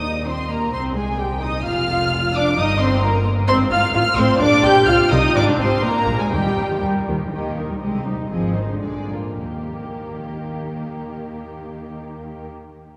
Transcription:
Already playing: D#2 D#4 D#5 D#6
0.27 C4 C5 C6
0.50 A#3 A#4 A#5
0.73 C2 C4 C5 C6
0.96 G#3 G#4 G#5
1.20 G3 G4 G5
1.42 D#4 D#5 D#6
1.65 F1 F2 F4 F5 F6
2.35 D4 D5 D6
2.58 G1 G2 D#4 D#5 D#6
2.81 C4 C5 C6
3.03 A#3 A#4 A#5
3.49 G#1 G#2 C4 C5 C6
3.60 G#2
3.71 G#1 G#2 F4 F5 F6
3.83 G#2
3.94 A1 A2 F4 F5 F6
4.17 A1 A2 C4 C5 C6
4.40 A#1 A#2 D4 D5 D6
4.52 A#2
4.63 A#1 A#2 G4 G5 G6
4.76 A#2
4.87 C2 C3 F4 F5 F6
5.11 C2 C3 D#4 D#5 D#6
5.34 G#1 G#2 D4 D5 D6
5.47 G#2
5.57 G#1 G#2 C4 C5 C6
5.70 G#2
5.82 A#1 A#2 A#3 A#4 A#5
6.07 A#1 A#2
6.20 G#3 G#4 G#5
6.32 D#2 D#3 G3 G4 G5
6.45 D#3
6.58 D#2 D#3
6.71 D#3
6.83 D#2 G3
7.08 D#2 D#3
7.26 F3
7.32 D#2 D#3 A#3 G4 D#5
7.56 D#4 A#4
7.70 G3
7.81 C2 G#3 C4 G4 D#5
8.05 G3 D#4 C5
8.30 G#1 F3 C4 G#4 D#5
8.56 D#3 D#4 C5
8.69 D3
8.82 A#1 G#3 G#4 D5
9.11 A#3 F4 A#4
9.40 D#2 D#3 A#3 G4 A#4

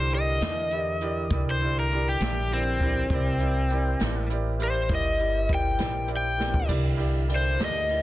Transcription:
Already playing: C2 D3 E4 G4 A#4 C5
0.10 E4 G4 A#4 D5, closed hi-hat
0.15 D#5
0.41 E2 E4 G4 A#4 D5, snare, closed hi-hat
0.70 E4 G4 A#4 D5, closed hi-hat
1.01 E4 G4 A#4 D5, closed hi-hat
1.30 C2 E4 G4 A#4 D5, kick, closed hi-hat
1.51 C5
1.61 E4 G4 A#4 D5, closed hi-hat
1.79 A#4
1.91 E4 G4 A#4 D5, closed hi-hat
2.09 G4
2.20 A#1 E4 G4 A#4 D5, snare, closed hi-hat
2.51 C4 E4 G4 A#4 D5, closed hi-hat
2.80 E4 G4 A#4 D5, kick, closed hi-hat
3.10 C2 E4 G4 A#4 C5 D5, kick, closed hi-hat
3.40 E4 G4 A#4 D5, closed hi-hat
3.70 E4 G4 A#4 D5, closed hi-hat
3.99 A1 E4 G4 A#4 D5, snare, closed hi-hat
4.30 E4 G4 A#4 D5, closed hi-hat
4.59 E4 G4 A#4 D5, closed hi-hat
4.63 C5
4.89 G1 E4 G4 A#4 D5, kick, closed hi-hat
4.95 D#5
5.19 E4 G4 A#4 D5, closed hi-hat
5.49 E4 G4 A#4 D5, kick, closed hi-hat
5.54 G5
5.78 A#1 E4 G4 A#4 D5, snare, closed hi-hat
6.08 E4 G4 A#4 D5, closed hi-hat
6.17 G5
6.38 A3 B3 E4 G4 A#4 D5, snare
6.45 C4 D4
6.50 E4 F4, kick
6.56 G4 A4
6.63 B4 C5
6.67 C2 D3 E4 G4 A#4 D5, kick, crash
6.97 E4 G4 A#4 D5, ride
7.28 E4 G4 A#4 D5, ride
7.36 C5
7.59 D2 E4 G4 A#4 D5, snare, ride
7.65 D#5
7.89 E4 G4 A#4 D5, ride

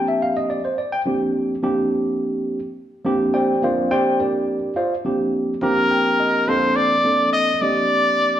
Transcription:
Already playing: F3 A#3 C4 D4 G4
0.08 E5
0.22 F5
0.37 D#5
0.50 D5
0.65 C5
0.78 D5
0.92 G5
1.06 F3 A#3 C4 D4 G4
1.63 F3 A#3 C4 D4 G4
3.05 F3 A#3 C4 D4 G4
3.34 G4 C5 D5 G5
3.62 F3 A#3 C4 D4 F4 A#4 C5 D5 F5
3.91 G4 C5 D5 G5
4.20 D4 G4 A#4 D5
4.76 F4 C5 D5 F5
5.05 F3 A#3 C4 D4 G4
5.62 F3 A#3 C4 D4 G4 A#4
5.91 G5
6.20 D#5
6.47 F3 A#3 C4 D4 A4 C5
6.76 D5
7.04 F3 A#3 C4 D4 A4
7.33 D#5
7.61 F3 A#3 C4 D4 G4 D5

